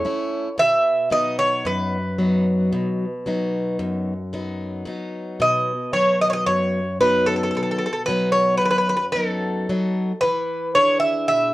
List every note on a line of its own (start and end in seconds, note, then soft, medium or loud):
0.00 0.55 C#5 medium
0.04 0.47 A3 soft
0.04 0.48 C#4 soft
0.04 0.48 E4 medium
0.57 1.62 B2 medium
0.57 1.09 E5 loud
1.10 1.97 F#3 soft
1.10 1.97 B3 soft
1.10 1.97 D#4 medium
1.10 1.38 D#5 medium
1.39 1.64 C#5 medium
1.65 2.69 F#2 medium
1.65 3.76 B4 medium
2.19 3.05 F#3 soft
2.19 3.04 B3 soft
2.19 3.05 D#4 soft
2.73 3.76 B2 medium
3.26 4.12 F#3 soft
3.26 4.12 B3 soft
3.26 4.12 D#4 soft
3.79 4.83 F#2 medium
4.33 4.84 F#3 soft
4.33 4.85 B3 soft
4.33 4.86 D#4 soft
4.86 5.72 F#3 soft
4.86 5.72 B3 soft
4.86 5.73 D#4 medium
5.40 6.44 B2 medium
5.40 5.93 D#5 medium
5.93 6.79 F#3 soft
5.93 6.79 B3 soft
5.93 6.80 D#4 soft
5.93 6.18 C#5 medium
6.21 6.27 D#5 medium
6.30 6.33 C#5 medium
6.30 6.46 D#5 medium
6.46 7.51 F#2 medium
6.46 6.97 C#5 medium
7.01 7.86 F#3 soft
7.01 7.86 B3 soft
7.01 7.86 D#4 medium
7.01 7.26 B4 medium
7.26 7.35 A4 medium
7.36 7.42 A4 medium
7.43 7.49 A4 medium
7.51 7.55 A4 soft
7.55 8.58 B2 medium
7.55 7.61 A4 medium
7.63 7.70 A4 soft
7.71 7.77 A4 medium
7.78 7.85 A4 medium
7.86 7.92 A4 medium
7.93 8.02 A4 medium
8.06 8.94 F#3 soft
8.06 8.94 B3 soft
8.06 8.94 D#4 soft
8.06 8.32 B4 medium
8.32 8.57 C#5 medium
8.57 9.65 F#2 medium
8.57 8.64 B4 medium
8.65 8.69 B4 medium
8.71 8.77 B4 medium
8.78 8.88 B4 medium
8.89 8.95 B4 medium
8.97 9.05 B4 medium
9.12 9.68 F#3 soft
9.12 9.69 B3 soft
9.12 9.68 D#4 soft
9.12 10.20 A4 medium
9.69 10.12 F#3 soft
9.69 10.12 B3 soft
9.69 10.12 D#4 soft
10.21 11.26 E3 medium
10.21 10.71 B4 medium
10.75 11.54 D4 soft
10.75 11.54 E4 soft
10.75 11.54 G#4 medium
10.75 11.00 C#5 medium
11.00 11.26 E5 medium
11.28 11.54 B2 medium
11.28 11.54 E5 medium